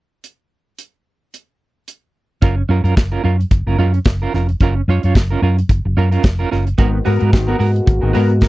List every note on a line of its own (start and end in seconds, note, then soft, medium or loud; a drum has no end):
0.24 closed hi-hat soft
0.79 closed hi-hat medium
1.34 closed hi-hat soft
1.88 closed hi-hat medium
2.42 2.62 F#1 medium
2.42 2.61 C#4 medium
2.42 2.57 F4 medium
2.42 2.56 A#4 medium
2.42 kick medium
2.42 closed hi-hat soft
2.58 muted clean electric guitar stroke soft
2.69 2.80 F#2 medium
2.69 2.84 C#4 medium
2.69 2.84 F4 medium
2.69 2.83 A#4 medium
2.84 2.93 F#2 medium
2.84 2.95 C#4 soft
2.84 2.96 F4 soft
2.84 2.96 A#4 medium
2.84 closed hi-hat soft
2.97 3.16 F#1 medium
2.97 kick loud
2.97 snare medium
2.97 closed hi-hat medium
3.12 3.22 C#4 medium
3.12 3.23 F4 medium
3.12 3.24 A#4 medium
3.24 3.43 F#2 medium
3.24 3.40 C#4 medium
3.24 3.38 F4 medium
3.24 3.37 A#4 medium
3.39 muted clean electric guitar stroke soft
3.39 closed hi-hat soft
3.51 3.62 F#1 medium
3.51 muted clean electric guitar stroke soft
3.51 kick medium
3.51 closed hi-hat medium
3.67 3.75 F#1 loud
3.67 3.77 C#4 medium
3.67 3.78 F4 medium
3.67 3.79 A#4 medium
3.78 3.98 F#2 medium
3.78 3.98 C#4 medium
3.78 3.94 F4 medium
3.78 3.93 A#4 medium
3.94 muted clean electric guitar stroke soft
3.94 closed hi-hat soft
4.05 4.25 F#1 medium
4.05 muted clean electric guitar stroke soft
4.05 kick loud
4.05 snare loud
4.05 closed hi-hat medium
4.22 4.33 C#4 medium
4.22 4.34 F4 medium
4.22 4.34 A#4 medium
4.33 4.53 F1 loud
4.33 4.49 C#4 soft
4.33 4.49 F4 medium
4.33 4.48 A#4 medium
4.33 snare soft
4.49 muted clean electric guitar stroke soft
4.49 closed hi-hat soft
4.60 4.80 F#1 medium
4.60 4.80 C#4 medium
4.60 4.76 F4 medium
4.60 4.75 A#4 medium
4.60 kick medium
4.60 closed hi-hat soft
4.77 muted clean electric guitar stroke soft
4.88 4.99 F#2 medium
4.88 5.04 C#4 medium
4.88 5.04 F4 medium
4.88 5.03 C#5 medium
5.03 5.12 F#2 medium
5.03 5.15 C#4 soft
5.03 5.16 F4 medium
5.03 5.16 C#5 medium
5.03 closed hi-hat soft
5.15 5.35 F#1 medium
5.15 muted clean electric guitar stroke soft
5.15 kick medium
5.15 snare loud
5.15 closed hi-hat medium
5.30 5.41 C#4 medium
5.30 5.42 F4 medium
5.30 5.43 A#4 medium
5.42 5.61 F#2 medium
5.42 5.58 C#4 medium
5.42 5.58 F4 medium
5.42 5.58 A#4 medium
5.58 muted clean electric guitar stroke soft
5.58 closed hi-hat soft
5.69 5.80 F#1 medium
5.69 muted clean electric guitar stroke soft
5.69 kick medium
5.69 closed hi-hat medium
5.85 5.94 F#1 medium
5.85 muted clean electric guitar stroke soft
5.97 6.16 F#2 loud
5.97 6.12 C#4 medium
5.97 6.11 F4 medium
5.97 6.10 A#4 medium
6.11 6.24 C#4 medium
6.11 6.24 F4 medium
6.11 6.24 A#4 medium
6.11 closed hi-hat soft
6.23 6.43 F1 loud
6.23 muted clean electric guitar stroke soft
6.23 kick loud
6.23 snare loud
6.23 closed hi-hat medium
6.39 6.50 C#4 medium
6.39 6.51 F4 medium
6.39 6.51 A#4 medium
6.51 6.71 F#1 medium
6.51 6.67 C#4 medium
6.51 6.67 F4 medium
6.51 6.66 A#4 medium
6.51 snare soft
6.67 muted clean electric guitar stroke soft
6.67 closed hi-hat soft
6.78 6.98 G#1 loud
6.78 6.93 G#2 medium
6.78 8.48 B2 medium
6.78 6.93 D#3 medium
6.78 8.48 G#3 medium
6.78 8.48 A#3 medium
6.78 6.98 B3 medium
6.78 8.48 F#4 medium
6.78 6.93 F#4 medium
6.78 6.92 A#4 medium
6.78 kick medium
6.78 closed hi-hat soft
6.93 6.99 F#4 soft
6.93 6.99 A#4 soft
6.93 muted clean electric guitar stroke soft
7.05 7.17 G#2 medium
7.05 7.20 B3 medium
7.05 7.19 F#4 medium
7.05 7.21 F#4 medium
7.05 7.18 A#4 medium
7.05 7.21 A#4 medium
7.05 open hi-hat soft
7.19 7.35 G#2 medium
7.19 7.31 B3 medium
7.19 7.32 F#4 medium
7.19 7.32 A#4 medium
7.19 closed hi-hat soft
7.32 7.53 G#1 medium
7.32 7.48 G#2 medium
7.32 7.48 D#3 medium
7.32 muted clean electric guitar stroke soft
7.32 kick loud
7.32 snare loud
7.32 closed hi-hat medium
7.47 7.60 B3 medium
7.47 7.57 B3 medium
7.47 7.58 F#4 medium
7.47 7.59 F#4 medium
7.47 7.59 A#4 medium
7.58 7.79 G#2 medium
7.58 7.75 B3 medium
7.58 7.74 F#4 medium
7.58 7.67 F#4 soft
7.58 7.73 A#4 medium
7.58 7.67 A#4 soft
7.58 open hi-hat medium
7.74 muted clean electric guitar stroke soft
7.74 closed hi-hat soft
7.87 7.98 G#1 loud
7.87 7.94 F#4 soft
7.87 7.94 A#4 soft
7.87 muted clean electric guitar stroke soft
7.87 kick medium
7.87 closed hi-hat medium
8.01 8.11 G#1 medium
8.01 8.15 G#2 medium
8.01 8.14 D#3 medium
8.01 8.12 B3 soft
8.01 8.13 F#4 medium
8.01 8.14 A#4 soft
8.13 8.44 G#2 medium
8.13 8.34 B3 medium
8.13 8.30 B3 medium
8.13 8.30 F#4 medium
8.13 8.29 A#4 loud
8.13 8.30 A#4 medium
8.13 open hi-hat medium
8.30 muted clean electric guitar stroke medium
8.30 closed hi-hat soft
8.41 8.48 F1 medium
8.41 8.48 F#4 medium
8.41 8.48 A#4 medium
8.41 muted clean electric guitar stroke soft
8.41 kick loud
8.41 snare loud
8.41 closed hi-hat medium